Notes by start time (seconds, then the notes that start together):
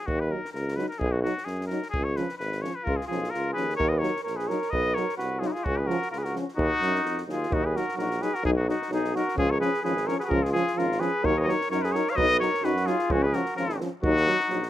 0.06 D#2 F#4, kick
0.20 B4
0.30 F#3 D#4 A#4
0.45 snare
0.53 C#2 A#4, snare
0.68 snare
0.76 F#3 D#4 B4, snare
0.88 A#4, snare
0.99 B1 G#4, kick
1.12 F#4
1.23 F#3 D#4 F#4, snare
1.38 snare
1.44 F#2 G#4, snare
1.61 snare
1.67 F#3 A#4, snare
1.71 D#4
1.83 snare
1.90 C#2 G#4, kick
2.04 C#5
2.16 F3 C#4 B4, snare
2.29 snare
2.38 G#1 B4, snare
2.52 snare
2.62 F3 C#4 C#5, snare
2.75 B4
2.84 C#2 F4 A#4, kick
2.96 F4 G#4
3.01 snare
3.06 B1 F3 C#4 F4 G#4
3.12 snare
3.24 snare
3.30 C#2 F4 A#4
3.34 snare
3.52 F3 C#4 G#4 B4
3.57 D#2, snare
3.70 snare
3.76 D#2 A#4 C#5
3.80 kick
3.89 B4 D#5
3.98 F#3 D#4 A#4 C#5
4.03 snare
4.16 snare
4.23 A#1 A#4 C#5
4.27 snare
4.36 G#4 B4, snare
4.47 F#3 D#4 A#4 C#5, snare
4.62 snare
4.70 B1 B4 D#5, kick
4.94 F#3 D#4 A#4 C#5, snare
5.09 snare
5.17 C2 F#4 B4, snare
5.39 F#3 D#4 F4 G#4, snare
5.47 D#4 F#4
5.52 F4 G#4, snare
5.64 C#2 C#4 F#4, kick
5.77 G#4 B4
5.86 F3 C#4 F#4 A#4
5.90 snare
6.02 snare
6.10 C#2 F4 A#4, snare
6.18 G#4 B4
6.23 F#4 A#4, snare
6.34 F3 C#4, snare
6.48 snare
6.56 D#2 D#4 F#4, kick
6.81 F#2 F#3 D#4, snare
6.95 snare
7.04 F2, snare
7.18 snare
7.27 D#2 F#3 D#4, snare
7.31 F4 G#4
7.43 snare
7.50 D#2 F#3 D#4 F#4, kick
7.64 G#4 B4
7.74 F#3 D#4 F#4 A#4, snare
7.89 snare
7.96 A#1 F#3 D#4 A#4, snare
8.01 F#4
8.11 snare
8.19 F#3 D#4 G#4 B4, snare
8.34 F#4 A#4, snare
8.43 B1 F#3 D#4 G#4, kick
8.57 D#4 F#4
8.66 F#3 D#4 F#4, snare
8.82 snare
8.90 B1 F#3 D#4 G#4, snare
9.04 snare
9.13 F#3 D#4 F#4 A#4, snare
9.28 snare
9.36 C#2 F3 C#4 F4 G#4, kick
9.51 A#4 C#5
9.59 F3 C#4 G#4 B4, snare
9.74 snare
9.82 G#1 F3 C#4 G#4 B4, snare
9.97 snare
10.06 F3 C#4 A#4 C#5, snare
10.18 F#4 G#4 B4, snare
10.23 G#4 B4
10.29 C#2 F3 C#4 F4 A#4, kick
10.42 F4 G#4, snare
10.52 F3 C#4 F4 G#4, snare
10.67 snare
10.75 G#1 F3 C#4 F4 A#4, snare
10.92 snare
10.99 F3 C#4 G#4 B4, snare
11.23 D#2 F#3 D#4 A#4 C#5, kick
11.37 A#4 B4 C#5 D#5
11.41 B4 D#5
11.46 F#3 D#4 A#4 C#5, snare
11.61 snare
11.70 F#2 F#3 D#4 A#4 C#5, snare
11.82 G#4 B4, snare
11.92 F#3 D#4 A#4 C#5, snare
12.07 F5, snare
12.11 C#5
12.16 B1 F#3 D#4 B4 D#5, kick
12.39 F#3 D#4 A#4 C#5, snare
12.54 snare
12.62 F#2 F#3 D#4 F#4 B4, snare
12.77 snare
12.86 F#3 D#4 F4 G#4, snare
12.99 snare
13.09 C#2 F3 C#4 F#4, kick
13.23 G#4 B4
13.33 F3 C#4 F#4 A#4, snare
13.46 snare
13.56 G#1 F3 C#4 F4 A#4, snare
13.69 snare
13.80 F3 C#4, snare
14.02 D#2 F#3 D#4 F#4, kick
14.17 snare
14.27 F#3 D#4, snare
14.40 snare
14.49 A#1 F#3 D#4, snare
14.62 snare